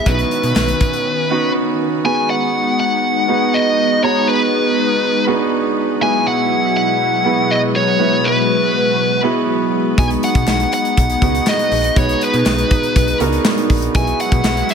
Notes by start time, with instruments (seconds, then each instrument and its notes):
0.06 fm bass B1, analog synth pad D#3 B3 C#4, grand piano B3 C#4 D#4 F#4, lead electric guitar B4, kick, closed hi-hat
0.19 closed hi-hat
0.31 closed hi-hat
0.43 fm bass B2, closed hi-hat
0.55 fm bass B1, snare, clap, tambourine
0.68 closed hi-hat
0.81 kick, clap, closed hi-hat
0.93 closed hi-hat
1.30 grand piano B3 C#4 D#4 F#4
2.04 analog synth pad G#3 B3 D#4, grand piano B3 D#4 F#4 G#4 B4, lead electric guitar G#5
2.30 lead electric guitar F#5
2.80 lead electric guitar F#5
3.28 grand piano B3 D#4 F#4 G#4 B4
3.54 lead electric guitar D#5
4.03 grand piano B3 D#4 F#4 G#4 A#5, lead electric guitar C#5
4.29 lead electric guitar B4
5.27 grand piano B3 D4 F#4 G#4 B4
5.33 grand piano D#4
6.01 analog synth pad B2 F#3 G#3 E4, grand piano B3 E4 F#4 G#4 B4, lead electric guitar G#5
6.28 lead electric guitar F#5
6.77 lead electric guitar F#5
7.24 grand piano B3 E4 F#4 G#4 B4
7.51 lead electric guitar D#5
7.76 lead electric guitar C#5
7.99 grand piano B3 E4 F#4 G#4 B4, analog synth pad F#4
8.25 lead electric guitar B4
9.23 grand piano B3 E4 F#4 G#4 B4
9.98 fm bass B1, grand piano B3 D#4 F#4 G#4 B4, analog synth pad B3 D#4, lead electric guitar G#5, kick, closed hi-hat
10.10 closed hi-hat
10.23 lead electric guitar F#5, closed hi-hat
10.35 fm bass B2, kick, closed hi-hat
10.47 fm bass B1, snare, clap, tambourine
10.60 closed hi-hat
10.73 lead electric guitar F#5, clap, closed hi-hat
10.85 closed hi-hat
10.97 fm bass B1, kick, closed hi-hat
11.10 closed hi-hat
11.21 fm bass C#2, grand piano B3 D#4 F#4 G#4 B4, kick, closed hi-hat
11.35 closed hi-hat
11.47 lead electric guitar D#5, snare, clap, tambourine
11.59 closed hi-hat
11.72 fm bass A#1, open hi-hat
11.84 closed hi-hat
11.96 fm bass B1, grand piano B3 D#4 F#4 G#4 B4, lead electric guitar C#5, kick, closed hi-hat
12.09 closed hi-hat
12.21 lead electric guitar B4, closed hi-hat
12.34 fm bass B2, closed hi-hat
12.46 fm bass B1, snare, clap, tambourine
12.59 closed hi-hat
12.71 kick, closed hi-hat
12.83 closed hi-hat
12.96 fm bass B1, kick, closed hi-hat
13.08 closed hi-hat
13.20 fm bass C#2, grand piano B3 D4 F#4 G#4 A#4, closed hi-hat
13.26 grand piano D#4
13.33 closed hi-hat
13.45 snare, clap, tambourine
13.58 closed hi-hat
13.70 fm bass A#1, kick, open hi-hat
13.82 closed hi-hat
13.94 fm bass B1, analog synth pad F#3 G#3 E4, grand piano B3 E4 F#4 G#4 B4, lead electric guitar G#5, kick, closed hi-hat
14.07 closed hi-hat
14.20 lead electric guitar F#5, closed hi-hat
14.32 fm bass B2, kick, closed hi-hat
14.44 fm bass B1, snare, clap, tambourine
14.57 closed hi-hat
14.69 lead electric guitar E5, clap, closed hi-hat